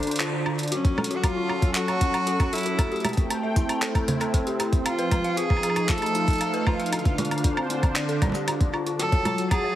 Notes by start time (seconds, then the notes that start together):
Already playing: D3 D4 C5 F5
0.03 closed hi-hat
0.07 D4, closed hi-hat
0.11 closed hi-hat
0.16 closed hi-hat
0.20 F4, clap
0.33 D4
0.46 D4, high woodblock
0.59 closed hi-hat
0.63 closed hi-hat
0.68 closed hi-hat
0.72 F#3 C#4 F#4, closed hi-hat
0.85 kick, closed hi-hat
0.96 C#4 A4, low conga, high woodblock
1.04 closed hi-hat
1.10 F#4, closed hi-hat
1.15 F#4 A4
1.23 F4 F#4, kick, closed hi-hat, high woodblock
1.36 F4
1.49 F4, high woodblock
1.62 kick, closed hi-hat
1.75 F#4 F#5, clap, closed hi-hat
1.88 C#5, closed hi-hat, high woodblock
2.01 C#4, kick, closed hi-hat
2.14 F#5, closed hi-hat, high woodblock
2.27 F#4, closed hi-hat
2.40 kick, closed hi-hat, high woodblock
2.53 E4 A4, closed hi-hat
2.55 closed hi-hat
2.58 closed hi-hat
2.61 closed hi-hat
2.63 F#4, closed hi-hat
2.66 closed hi-hat
2.79 A3 A4, kick, closed hi-hat, high woodblock
2.92 G4, closed hi-hat
2.96 closed hi-hat
3.00 G5, closed hi-hat
3.04 C4 G4, closed hi-hat, low conga, high woodblock
3.09 closed hi-hat
3.13 closed hi-hat
3.17 kick, closed hi-hat
3.30 A5, closed hi-hat, high woodblock
3.43 E5
3.51 E4
3.56 E4, kick, closed hi-hat
3.69 A5, closed hi-hat, high woodblock
3.82 A4, clap, closed hi-hat
3.95 kick, closed hi-hat, high woodblock
4.08 C5, closed hi-hat, low conga
4.21 A4, closed hi-hat, high woodblock
4.34 A4, kick, closed hi-hat
4.47 G4, closed hi-hat
4.60 G4, closed hi-hat, high woodblock
4.73 kick, closed hi-hat
4.85 F3 F4 F5, closed hi-hat, high woodblock
4.98 B4, closed hi-hat
5.11 B4, kick, closed hi-hat, low conga, high woodblock
5.24 F5, closed hi-hat
5.37 D#4 F4 G#4, closed hi-hat
5.50 kick, high woodblock
5.57 high woodblock
5.63 G#4, closed hi-hat, high woodblock
5.70 high woodblock
5.76 A3 F4 F5, closed hi-hat, high woodblock
5.89 F4 A4, kick, clap, closed hi-hat
5.98 closed hi-hat
6.02 D#4, closed hi-hat, high woodblock
6.06 closed hi-hat
6.15 D#4, closed hi-hat
6.28 kick, closed hi-hat
6.30 closed hi-hat
6.33 closed hi-hat
6.36 closed hi-hat
6.38 closed hi-hat
6.41 F5, closed hi-hat, high woodblock
6.54 B4, closed hi-hat
6.67 F4 B4, kick, high woodblock
6.79 F5, closed hi-hat
6.86 closed hi-hat
6.92 D3 D4, closed hi-hat, high woodblock
6.99 D4, closed hi-hat
7.05 kick, closed hi-hat
7.18 F4, closed hi-hat, low conga
7.25 closed hi-hat
7.30 D4 C5, closed hi-hat, high woodblock
7.38 closed hi-hat
7.44 D4, kick, closed hi-hat
7.57 C4, high woodblock
7.70 C4, closed hi-hat
7.83 kick, closed hi-hat, high woodblock
7.96 D5, clap, closed hi-hat
8.09 A4, closed hi-hat
8.22 D5, kick, closed hi-hat, low conga, high woodblock
8.24 low conga
8.27 low conga
8.30 low conga
8.32 G4, closed hi-hat, low conga
8.48 D4, closed hi-hat, high woodblock
8.61 kick, closed hi-hat
8.73 F4, high woodblock
8.86 F4, closed hi-hat
8.99 F#3 F#4 A4 A6, closed hi-hat
9.12 C#5, kick, closed hi-hat
9.25 F4, closed hi-hat, low conga, high woodblock
9.38 closed hi-hat
9.51 G#4 F#5, kick, closed hi-hat, high woodblock
9.64 C#5